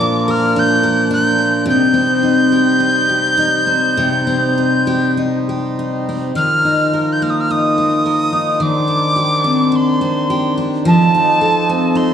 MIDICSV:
0, 0, Header, 1, 4, 480
1, 0, Start_track
1, 0, Tempo, 1115242
1, 730, Time_signature, 4, 2, 24, 8
1, 1210, Tempo, 1183432
1, 2650, Tempo, 1125704
1, 4570, Tempo, 1088929
1, 5131, End_track
2, 0, Start_track
2, 0, Title_t, "Tin whistle"
2, 0, Program_c, 0, 75
2, 0, Note_on_c, 0, 86, 96
2, 132, Note_on_c, 0, 89, 91
2, 138, Note_off_c, 0, 86, 0
2, 255, Note_on_c, 0, 91, 90
2, 262, Note_off_c, 0, 89, 0
2, 484, Note_off_c, 0, 91, 0
2, 487, Note_on_c, 0, 91, 91
2, 710, Note_off_c, 0, 91, 0
2, 726, Note_on_c, 0, 91, 86
2, 2153, Note_off_c, 0, 91, 0
2, 2651, Note_on_c, 0, 89, 79
2, 2977, Note_on_c, 0, 91, 59
2, 2983, Note_off_c, 0, 89, 0
2, 3019, Note_on_c, 0, 89, 61
2, 3026, Note_off_c, 0, 91, 0
2, 3051, Note_on_c, 0, 87, 63
2, 3057, Note_off_c, 0, 89, 0
2, 3095, Note_on_c, 0, 89, 64
2, 3102, Note_off_c, 0, 87, 0
2, 3140, Note_on_c, 0, 87, 62
2, 3147, Note_off_c, 0, 89, 0
2, 3615, Note_on_c, 0, 86, 75
2, 3621, Note_off_c, 0, 87, 0
2, 4099, Note_on_c, 0, 84, 72
2, 4105, Note_off_c, 0, 86, 0
2, 4459, Note_off_c, 0, 84, 0
2, 4575, Note_on_c, 0, 81, 82
2, 5057, Note_on_c, 0, 84, 76
2, 5063, Note_off_c, 0, 81, 0
2, 5131, Note_off_c, 0, 84, 0
2, 5131, End_track
3, 0, Start_track
3, 0, Title_t, "Harmonium"
3, 0, Program_c, 1, 20
3, 0, Note_on_c, 1, 53, 74
3, 0, Note_on_c, 1, 62, 69
3, 0, Note_on_c, 1, 70, 87
3, 711, Note_off_c, 1, 53, 0
3, 716, Note_off_c, 1, 62, 0
3, 716, Note_off_c, 1, 70, 0
3, 724, Note_on_c, 1, 55, 70
3, 724, Note_on_c, 1, 72, 76
3, 726, Note_on_c, 1, 63, 63
3, 2630, Note_off_c, 1, 55, 0
3, 2630, Note_off_c, 1, 72, 0
3, 2631, Note_off_c, 1, 63, 0
3, 2654, Note_on_c, 1, 63, 55
3, 2654, Note_on_c, 1, 70, 61
3, 2655, Note_on_c, 1, 53, 60
3, 3602, Note_off_c, 1, 63, 0
3, 3602, Note_off_c, 1, 70, 0
3, 3603, Note_off_c, 1, 53, 0
3, 3611, Note_on_c, 1, 72, 71
3, 3612, Note_on_c, 1, 51, 61
3, 3615, Note_on_c, 1, 62, 53
3, 4559, Note_off_c, 1, 72, 0
3, 4560, Note_off_c, 1, 51, 0
3, 4561, Note_off_c, 1, 62, 0
3, 4564, Note_on_c, 1, 69, 72
3, 4566, Note_on_c, 1, 53, 73
3, 4566, Note_on_c, 1, 63, 62
3, 5131, Note_off_c, 1, 53, 0
3, 5131, Note_off_c, 1, 63, 0
3, 5131, Note_off_c, 1, 69, 0
3, 5131, End_track
4, 0, Start_track
4, 0, Title_t, "Steel-string acoustic guitar"
4, 0, Program_c, 2, 25
4, 0, Note_on_c, 2, 46, 78
4, 0, Note_on_c, 2, 53, 71
4, 0, Note_on_c, 2, 58, 55
4, 3, Note_on_c, 2, 62, 51
4, 120, Note_on_c, 2, 70, 63
4, 237, Note_off_c, 2, 62, 0
4, 242, Note_on_c, 2, 62, 56
4, 338, Note_off_c, 2, 53, 0
4, 354, Note_off_c, 2, 70, 0
4, 359, Note_on_c, 2, 70, 59
4, 471, Note_off_c, 2, 62, 0
4, 476, Note_on_c, 2, 62, 58
4, 591, Note_off_c, 2, 58, 0
4, 596, Note_on_c, 2, 58, 46
4, 712, Note_on_c, 2, 48, 80
4, 769, Note_off_c, 2, 58, 0
4, 769, Note_off_c, 2, 62, 0
4, 771, Note_off_c, 2, 46, 0
4, 771, Note_off_c, 2, 70, 0
4, 834, Note_on_c, 2, 60, 47
4, 960, Note_on_c, 2, 63, 47
4, 1085, Note_on_c, 2, 67, 55
4, 1203, Note_off_c, 2, 63, 0
4, 1205, Note_on_c, 2, 63, 51
4, 1319, Note_off_c, 2, 67, 0
4, 1324, Note_on_c, 2, 67, 57
4, 1437, Note_off_c, 2, 63, 0
4, 1439, Note_on_c, 2, 63, 56
4, 1552, Note_off_c, 2, 60, 0
4, 1557, Note_on_c, 2, 60, 47
4, 1672, Note_off_c, 2, 48, 0
4, 1681, Note_on_c, 2, 48, 71
4, 1796, Note_off_c, 2, 60, 0
4, 1801, Note_on_c, 2, 60, 50
4, 1924, Note_off_c, 2, 63, 0
4, 1926, Note_on_c, 2, 63, 48
4, 2040, Note_off_c, 2, 67, 0
4, 2045, Note_on_c, 2, 67, 61
4, 2166, Note_off_c, 2, 63, 0
4, 2168, Note_on_c, 2, 63, 52
4, 2291, Note_off_c, 2, 67, 0
4, 2296, Note_on_c, 2, 67, 50
4, 2416, Note_off_c, 2, 63, 0
4, 2418, Note_on_c, 2, 63, 44
4, 2533, Note_off_c, 2, 60, 0
4, 2539, Note_on_c, 2, 60, 40
4, 2645, Note_off_c, 2, 48, 0
4, 2646, Note_on_c, 2, 51, 63
4, 2699, Note_off_c, 2, 67, 0
4, 2700, Note_off_c, 2, 60, 0
4, 2771, Note_off_c, 2, 63, 0
4, 2773, Note_on_c, 2, 63, 43
4, 2894, Note_on_c, 2, 70, 50
4, 3016, Note_on_c, 2, 58, 50
4, 3135, Note_off_c, 2, 63, 0
4, 3137, Note_on_c, 2, 63, 49
4, 3249, Note_off_c, 2, 58, 0
4, 3254, Note_on_c, 2, 58, 46
4, 3367, Note_off_c, 2, 70, 0
4, 3373, Note_on_c, 2, 70, 55
4, 3486, Note_off_c, 2, 63, 0
4, 3488, Note_on_c, 2, 63, 44
4, 3603, Note_off_c, 2, 51, 0
4, 3605, Note_on_c, 2, 51, 68
4, 3656, Note_off_c, 2, 70, 0
4, 3657, Note_off_c, 2, 58, 0
4, 3721, Note_off_c, 2, 63, 0
4, 3722, Note_on_c, 2, 62, 45
4, 3843, Note_on_c, 2, 67, 46
4, 3963, Note_on_c, 2, 60, 54
4, 4076, Note_off_c, 2, 62, 0
4, 4081, Note_on_c, 2, 62, 50
4, 4204, Note_off_c, 2, 60, 0
4, 4206, Note_on_c, 2, 60, 48
4, 4324, Note_off_c, 2, 67, 0
4, 4329, Note_on_c, 2, 67, 56
4, 4441, Note_off_c, 2, 62, 0
4, 4447, Note_on_c, 2, 62, 49
4, 4565, Note_on_c, 2, 53, 72
4, 4617, Note_off_c, 2, 62, 0
4, 4618, Note_off_c, 2, 67, 0
4, 4694, Note_on_c, 2, 63, 48
4, 4812, Note_on_c, 2, 69, 58
4, 4825, Note_off_c, 2, 51, 0
4, 4934, Note_off_c, 2, 60, 0
4, 4935, Note_on_c, 2, 60, 50
4, 5045, Note_off_c, 2, 63, 0
4, 5050, Note_on_c, 2, 63, 55
4, 5131, Note_off_c, 2, 53, 0
4, 5131, Note_off_c, 2, 60, 0
4, 5131, Note_off_c, 2, 63, 0
4, 5131, Note_off_c, 2, 69, 0
4, 5131, End_track
0, 0, End_of_file